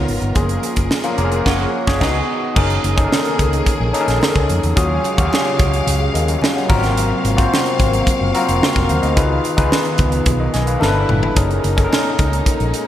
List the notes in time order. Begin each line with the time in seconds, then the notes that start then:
Already playing: D#3 B3 D#4 F4 A#4 C#5
0.08 G#1, open hi-hat, high conga
0.22 G1, closed hi-hat
0.35 F#1 F3 A#3 C#4 F4 G#4, kick, closed hi-hat
0.49 closed hi-hat
0.63 closed hi-hat, muted conga
0.76 F#1, kick, closed hi-hat
0.91 snare, high conga
1.04 A#3 C#4 F4 A#4, closed hi-hat
1.17 F1 A#3 C#4 F4 G#4 A#5, closed hi-hat, low conga
1.25 A#4
1.32 closed hi-hat
1.46 F#1 C#5 F#5, kick, snare, crash
1.87 F#1 G#4 C#5, kick, snare
2.00 C#2 D#3 B3 D#4 F#4 G#4 D#5, kick, snare, crash
2.07 F#4
2.56 F#1 D#3 A#3 C#4 D#4 G#4 A#4, kick, crash
2.70 closed hi-hat
2.84 F#1, closed hi-hat, muted conga
2.96 C#4 D#4 G#4 A4, kick, closed hi-hat
3.04 A#4
3.12 snare, high conga
3.25 closed hi-hat
3.39 C#2, kick, closed hi-hat
3.53 closed hi-hat
3.66 kick, closed hi-hat, muted conga
3.80 A#1
3.93 C#4 D#4 G#4 A4, closed hi-hat
4.01 A#4
4.08 A#1, snare, closed hi-hat
4.22 snare, high conga
4.35 C#2, kick, closed hi-hat
4.49 F2, closed hi-hat, high conga
4.63 E2, closed hi-hat, high conga
4.76 D#2 C#3 F#3 G#3 C#4 F4 F#4 G#4 F5, kick, closed hi-hat
5.04 closed hi-hat, muted conga
5.17 D#2 C#4 F4 F#4 G4, kick, closed hi-hat
5.25 G#4
5.33 snare, high conga
5.59 C#2, kick, closed hi-hat, muted conga, low conga
5.74 closed hi-hat
5.87 C#2, closed hi-hat, muted conga, low conga
6.14 D#2 A#4 D#5, closed hi-hat
6.28 A#4 F5, closed hi-hat
6.41 D#5 G#5, snare, high conga
6.55 C#5 F#5, snare
6.68 G#1 C3 A#3 B3 F4 F#4 A#4 F5, kick, crash, high conga
6.75 C4
6.83 snare, closed hi-hat, high conga
6.97 closed hi-hat
7.25 G#1, closed hi-hat, muted conga
7.36 C4 F4 F#4 C5, kick, closed hi-hat
7.53 snare, high conga
7.66 closed hi-hat
7.79 G#1, kick, closed hi-hat, muted conga
7.93 closed hi-hat
8.07 kick, closed hi-hat, muted conga
8.21 F#1
8.34 C4 F4 F#4 A#4, closed hi-hat
8.49 F1, closed hi-hat
8.61 snare, high conga
8.76 F1 F4 A#4, kick, snare, closed hi-hat
8.89 D#2 C5 F5, closed hi-hat, high conga
9.02 D2 A#4 D#5, closed hi-hat, high conga
9.16 C#2 D#3 B3 D#4 F4 G#4 B4, kick, closed hi-hat
9.44 closed hi-hat, muted conga
9.57 C#2 D#4 F4 G#4 B4, kick, closed hi-hat
9.72 snare, high conga
9.85 closed hi-hat
9.98 C#2, kick, closed hi-hat, muted conga, low conga
10.12 closed hi-hat
10.26 B1, kick, closed hi-hat, muted conga, low conga
10.40 A#4 D#5
10.54 B1 D#5 G#5, snare, closed hi-hat
10.67 B4 F5, closed hi-hat
10.80 G1 B2 A3 D4 E4 A4 A#4, snare, high conga
10.88 B4
11.09 G1, mid tom, high conga
11.23 floor tom, high conga
11.36 F#1 A#2 G#3 C#4 D#4 G#4 A#4, kick, closed hi-hat
11.51 closed hi-hat
11.64 F#1, closed hi-hat, muted conga
11.77 C#4 D#4 G#4 A4, kick, closed hi-hat
11.84 A#4
11.93 snare, high conga
12.19 C#2, kick, closed hi-hat
12.33 closed hi-hat
12.46 kick, closed hi-hat, muted conga
12.60 A#1, closed hi-hat
12.74 closed hi-hat